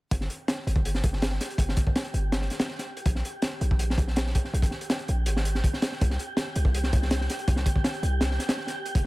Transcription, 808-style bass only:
0.11 0.28 G1 loud
0.67 1.02 G1 medium
1.04 1.39 G1 loud
1.58 1.75 G1 loud
2.14 2.49 G1 medium
3.06 3.23 A#1 loud
3.61 3.97 A#1 medium
3.98 4.33 A#1 loud
4.54 4.70 A#1 loud
5.09 5.29 A#1 medium
5.27 5.62 G#1 loud
6.01 6.18 C2 loud
6.56 6.91 C2 medium
6.93 7.28 C2 medium
7.48 7.64 C2 loud
8.03 8.38 C2 medium
8.95 9.06 F1 loud

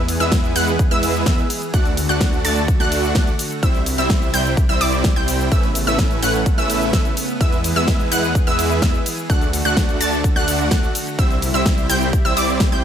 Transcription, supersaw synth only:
0.20 0.53 G#3 medium
0.20 0.53 B3 medium
0.20 0.53 E4 medium
0.20 0.53 B4 medium
0.20 0.53 E5 loud
0.56 0.72 G#3 loud
0.56 0.72 B3 medium
0.56 0.72 E4 loud
0.56 0.72 B4 medium
0.56 0.72 F#5 loud
0.91 1.24 G#3 loud
0.91 1.24 B3 medium
0.91 1.24 E4 medium
0.91 1.24 B4 medium
0.91 1.24 E5 loud
1.26 1.43 B3 medium
1.26 1.43 E4 medium
1.26 1.43 B4 medium
1.26 1.43 E5 medium
1.74 1.90 A3 medium
1.74 1.90 D4 medium
1.74 1.90 F#4 medium
1.74 1.90 D5 medium
1.74 1.90 F#5 loud
2.09 2.42 A3 medium
2.09 2.42 D4 medium
2.09 2.42 F#4 medium
2.09 2.42 D5 medium
2.09 2.42 F#5 loud
2.45 2.61 A3 loud
2.45 2.61 D4 medium
2.45 2.61 F#4 medium
2.45 2.61 D5 medium
2.45 2.61 A5 loud
2.80 3.13 A3 loud
2.80 3.13 D4 medium
2.80 3.13 F#4 medium
2.80 3.13 D5 loud
2.80 3.13 F#5 loud
3.16 3.32 A3 medium
3.16 3.32 D4 medium
3.16 3.32 F#4 medium
3.16 3.32 D5 medium
3.16 3.32 F#5 medium
3.63 3.79 G3 medium
3.63 3.79 C4 medium
3.63 3.79 E4 medium
3.63 3.79 C5 medium
3.63 3.79 E5 loud
3.98 4.31 G3 medium
3.98 4.31 C4 medium
3.98 4.31 E4 medium
3.98 4.31 C5 medium
3.98 4.31 E5 loud
4.34 4.50 G3 loud
4.34 4.50 C4 medium
4.34 4.50 E4 medium
4.34 4.50 C5 medium
4.34 4.50 G5 loud
4.69 4.79 G3 loud
4.69 4.79 C4 medium
4.69 4.79 E4 medium
4.69 4.79 C5 medium
4.69 4.79 E5 loud
4.81 5.07 G3 medium
4.81 5.07 C4 medium
4.81 5.07 E4 medium
4.81 5.07 C5 medium
4.81 5.07 D5 loud
5.16 5.49 G3 medium
5.16 5.49 C4 medium
5.16 5.49 E4 medium
5.16 5.49 C5 medium
5.16 5.49 G5 loud
5.52 5.68 A3 medium
5.52 5.68 C#4 medium
5.52 5.68 E4 medium
5.52 5.68 B4 medium
5.52 5.68 E5 loud
5.87 6.20 A3 medium
5.87 6.20 C#4 medium
5.87 6.20 E4 medium
5.87 6.20 B4 medium
5.87 6.20 E5 loud
6.23 6.39 A3 loud
6.23 6.39 C#4 medium
6.23 6.39 E4 medium
6.23 6.39 B4 medium
6.23 6.39 F#5 loud
6.58 6.91 A3 loud
6.58 6.91 C#4 medium
6.58 6.91 E4 medium
6.58 6.91 B4 medium
6.58 6.91 E5 loud
6.93 7.10 A3 medium
6.93 7.10 C#4 medium
6.93 7.10 E4 medium
6.93 7.10 B4 medium
6.93 7.10 E5 medium
7.41 7.57 G#3 medium
7.41 7.57 B3 medium
7.41 7.57 E4 medium
7.41 7.57 B4 medium
7.41 7.57 E5 loud
7.76 8.09 G#3 medium
7.76 8.09 B3 medium
7.76 8.09 E4 medium
7.76 8.09 B4 medium
7.76 8.09 E5 loud
8.12 8.28 G#3 loud
8.12 8.28 B3 medium
8.12 8.28 E4 medium
8.12 8.28 B4 medium
8.12 8.28 F#5 loud
8.47 8.80 G#3 loud
8.47 8.80 B3 medium
8.47 8.80 E4 loud
8.47 8.80 B4 medium
8.47 8.80 E5 loud
8.82 8.99 G#3 medium
8.82 8.99 B3 medium
8.82 8.99 E4 medium
8.82 8.99 B4 medium
8.82 8.99 E5 medium
9.30 9.46 A3 medium
9.30 9.46 D4 medium
9.30 9.46 F#4 medium
9.30 9.46 D5 medium
9.30 9.46 F#5 loud
9.65 9.98 A3 medium
9.65 9.98 D4 medium
9.65 9.98 F#4 medium
9.65 9.98 D5 medium
9.65 9.98 F#5 loud
10.01 10.17 A3 loud
10.01 10.17 D4 medium
10.01 10.17 F#4 loud
10.01 10.17 D5 loud
10.01 10.17 A5 loud
10.36 10.69 A3 loud
10.36 10.69 D4 medium
10.36 10.69 F#4 medium
10.36 10.69 D5 medium
10.36 10.69 F#5 loud
10.71 10.88 D4 medium
10.71 10.88 F#4 medium
10.71 10.88 F#5 medium
11.19 11.35 G3 medium
11.19 11.35 C4 medium
11.19 11.35 E4 medium
11.19 11.35 C5 medium
11.19 11.35 E5 loud
11.54 11.87 G3 medium
11.54 11.87 C4 medium
11.54 11.87 E4 medium
11.54 11.87 C5 medium
11.54 11.87 E5 loud
11.90 12.06 G3 loud
11.90 12.06 C4 medium
11.90 12.06 E4 medium
11.90 12.06 C5 medium
11.90 12.06 G5 loud
12.25 12.34 G3 loud
12.25 12.34 C4 medium
12.25 12.34 E4 medium
12.25 12.34 C5 medium
12.25 12.34 E5 loud
12.37 12.63 G3 loud
12.37 12.63 C4 medium
12.37 12.63 E4 medium
12.37 12.63 C5 medium
12.37 12.63 D5 loud
12.72 12.84 G3 medium
12.72 12.84 C4 medium
12.72 12.84 E4 medium
12.72 12.84 C5 medium
12.72 12.84 G5 loud

